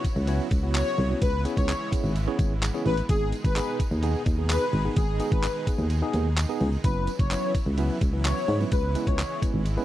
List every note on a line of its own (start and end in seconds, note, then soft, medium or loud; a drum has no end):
0.00 3.06 C#3 medium
0.00 1.20 F#3 medium
0.00 3.06 B3 medium
0.00 1.20 E4 medium
0.00 1.20 F#4 medium
0.04 kick medium
0.04 closed hi-hat medium
0.04 tambourine medium
0.16 0.40 C#2 loud
0.16 tambourine soft
0.27 0.47 B3 loud
0.27 0.47 C#4 medium
0.27 0.47 E4 medium
0.27 0.47 F#4 medium
0.27 0.47 C#5 loud
0.27 closed hi-hat medium
0.27 tambourine soft
0.40 tambourine soft
0.51 0.83 C#2 medium
0.51 kick loud
0.51 closed hi-hat medium
0.51 tambourine soft
0.63 0.88 B3 medium
0.63 0.88 C#4 medium
0.63 0.88 E4 medium
0.63 0.88 F#4 medium
0.63 0.88 C#5 medium
0.75 1.08 C#5 medium
0.75 clap loud
0.75 closed hi-hat loud
0.75 tambourine medium
0.86 tambourine soft
0.98 1.14 C2 loud
0.98 open hi-hat medium
1.10 1.22 B3 medium
1.10 1.22 C#4 medium
1.10 1.22 E4 medium
1.10 1.22 F#4 medium
1.10 1.22 C#5 medium
1.22 1.46 C#2 loud
1.22 3.08 E3 medium
1.22 3.08 G#3 medium
1.22 3.08 E4 medium
1.22 1.41 B4 loud
1.22 kick loud
1.22 closed hi-hat loud
1.22 tambourine medium
1.45 1.70 B3 medium
1.45 1.70 C#4 medium
1.45 1.70 E4 medium
1.45 1.70 G#4 medium
1.45 1.70 C#5 loud
1.45 closed hi-hat medium
1.45 tambourine medium
1.57 1.73 C#2 loud
1.57 1.90 C#5 medium
1.57 kick medium
1.57 closed hi-hat medium
1.57 tambourine soft
1.69 clap loud
1.69 closed hi-hat loud
1.69 tambourine medium
1.92 2.11 B3 medium
1.92 2.11 C#4 medium
1.92 2.11 E4 medium
1.92 2.11 G#4 medium
1.92 2.11 C#5 medium
1.92 kick medium
1.92 closed hi-hat medium
1.92 tambourine medium
2.04 2.28 G#1 loud
2.04 tambourine soft
2.16 closed hi-hat medium
2.16 tambourine soft
2.27 2.52 B3 medium
2.27 2.52 C#4 medium
2.27 2.52 E4 medium
2.27 2.52 G#4 medium
2.27 2.52 C#5 loud
2.39 2.71 G#1 medium
2.39 kick loud
2.39 closed hi-hat medium
2.39 tambourine soft
2.62 clap loud
2.62 closed hi-hat loud
2.62 tambourine medium
2.74 2.93 B3 medium
2.74 2.93 C#4 medium
2.74 2.93 E4 medium
2.74 2.93 G#4 medium
2.74 2.93 C#5 medium
2.74 tambourine soft
2.86 3.02 A1 loud
2.86 2.95 B4 medium
2.86 open hi-hat medium
2.97 closed hi-hat medium
2.97 tambourine soft
3.09 3.33 G#1 loud
3.09 6.80 B2 medium
3.09 6.81 D#3 medium
3.09 6.80 G#3 medium
3.09 3.34 B3 medium
3.09 6.81 D#4 medium
3.09 3.34 D#4 medium
3.09 6.80 G#4 medium
3.09 3.28 G#4 loud
3.09 3.34 G#4 medium
3.09 kick loud
3.09 closed hi-hat loud
3.09 tambourine medium
3.32 closed hi-hat medium
3.32 tambourine medium
3.44 3.60 G#1 loud
3.44 3.78 B4 medium
3.44 kick medium
3.44 closed hi-hat medium
3.44 tambourine soft
3.56 3.81 B3 medium
3.56 3.81 D#4 medium
3.56 3.81 G#4 medium
3.56 clap loud
3.56 closed hi-hat loud
3.56 tambourine medium
3.80 kick medium
3.80 closed hi-hat medium
3.80 tambourine medium
3.91 4.15 D#2 loud
3.91 tambourine soft
4.03 4.22 B3 loud
4.03 4.22 D#4 medium
4.03 4.22 G#4 loud
4.03 closed hi-hat medium
4.03 tambourine soft
4.15 tambourine soft
4.26 4.58 D#2 medium
4.26 kick loud
4.26 closed hi-hat medium
4.26 tambourine soft
4.38 4.63 B3 medium
4.38 4.63 D#4 medium
4.38 4.63 G#4 medium
4.50 4.83 B4 loud
4.50 clap loud
4.50 closed hi-hat loud
4.50 tambourine medium
4.62 tambourine soft
4.73 4.89 G#1 loud
4.73 open hi-hat medium
4.85 5.04 B3 medium
4.85 5.04 D#4 medium
4.85 5.04 G#4 medium
4.96 5.21 G#1 loud
4.96 5.16 G#4 loud
4.96 kick loud
4.96 closed hi-hat loud
4.96 tambourine medium
5.20 5.45 B3 medium
5.20 5.45 D#4 medium
5.20 5.45 G#4 loud
5.20 closed hi-hat medium
5.20 tambourine medium
5.32 5.48 G#1 loud
5.32 5.65 B4 medium
5.32 kick loud
5.32 closed hi-hat medium
5.43 clap loud
5.43 closed hi-hat loud
5.43 tambourine medium
5.67 5.86 B3 medium
5.67 5.86 D#4 medium
5.67 5.86 G#4 medium
5.67 kick medium
5.67 closed hi-hat medium
5.67 tambourine medium
5.78 6.03 D#2 loud
5.78 tambourine soft
5.90 closed hi-hat medium
5.90 tambourine soft
6.02 6.27 B3 loud
6.02 6.27 D#4 medium
6.02 6.27 G#4 loud
6.13 6.46 D#2 medium
6.13 closed hi-hat medium
6.13 tambourine soft
6.37 clap loud
6.37 closed hi-hat loud
6.37 tambourine medium
6.49 6.68 B3 loud
6.49 6.68 D#4 loud
6.49 6.68 G#4 loud
6.49 tambourine soft
6.61 6.77 C#2 loud
6.61 open hi-hat medium
6.72 tambourine soft
6.84 7.08 F#1 loud
6.84 9.85 C#3 medium
6.84 8.70 E3 medium
6.84 8.70 F#3 medium
6.84 7.09 F#3 medium
6.84 9.85 B3 medium
6.84 7.09 B3 medium
6.84 7.09 C#4 medium
6.84 9.85 E4 medium
6.84 7.09 E4 medium
6.84 7.03 B4 loud
6.84 7.10 B4 medium
6.84 kick loud
6.84 closed hi-hat medium
6.84 tambourine medium
7.07 closed hi-hat medium
7.07 tambourine medium
7.19 7.35 F#1 loud
7.19 7.53 C#5 medium
7.19 kick loud
7.19 closed hi-hat medium
7.19 tambourine soft
7.31 7.56 F#3 medium
7.31 7.56 B3 medium
7.31 7.56 C#4 medium
7.31 7.56 E4 medium
7.31 7.56 B4 medium
7.31 clap loud
7.31 closed hi-hat loud
7.31 tambourine medium
7.55 kick medium
7.55 closed hi-hat medium
7.55 tambourine medium
7.66 7.90 C#2 loud
7.78 7.97 F#3 loud
7.78 7.97 B3 medium
7.78 7.97 C#4 medium
7.78 7.97 E4 medium
7.78 7.97 B4 loud
7.78 closed hi-hat medium
7.78 tambourine soft
7.90 tambourine soft
8.01 8.33 C#2 loud
8.01 kick loud
8.01 closed hi-hat medium
8.01 tambourine soft
8.13 8.38 F#3 medium
8.13 8.38 B3 medium
8.13 8.38 C#4 medium
8.13 8.38 E4 medium
8.13 8.38 B4 medium
8.25 8.58 C#5 medium
8.25 clap loud
8.25 closed hi-hat loud
8.25 tambourine medium
8.37 tambourine soft
8.48 8.64 G#2 loud
8.48 open hi-hat medium
8.60 8.72 F#3 medium
8.60 8.72 B3 medium
8.60 8.72 C#4 medium
8.60 8.72 E4 medium
8.60 8.72 B4 medium
8.60 tambourine soft
8.72 8.96 C#2 loud
8.72 9.85 E3 medium
8.72 9.85 G#3 medium
8.72 8.91 B4 loud
8.72 kick loud
8.72 closed hi-hat medium
8.72 tambourine medium
8.95 9.20 G#3 medium
8.95 9.20 B3 medium
8.95 9.20 C#4 medium
8.95 9.20 E4 medium
8.95 9.20 B4 loud
8.95 closed hi-hat medium
8.95 tambourine medium
9.07 9.23 C#2 loud
9.07 9.40 C#5 medium
9.07 kick loud
9.07 closed hi-hat medium
9.19 clap loud
9.19 closed hi-hat loud
9.19 tambourine medium
9.42 9.61 G#3 medium
9.42 9.61 B3 medium
9.42 9.61 C#4 medium
9.42 9.61 E4 medium
9.42 9.61 B4 medium
9.42 kick medium
9.42 closed hi-hat medium
9.42 tambourine medium
9.54 9.78 G#1 loud
9.66 closed hi-hat medium
9.66 tambourine soft
9.77 9.85 G#3 loud
9.77 9.85 B3 medium
9.77 9.85 C#4 medium
9.77 9.85 E4 medium
9.77 9.85 B4 loud
9.77 tambourine soft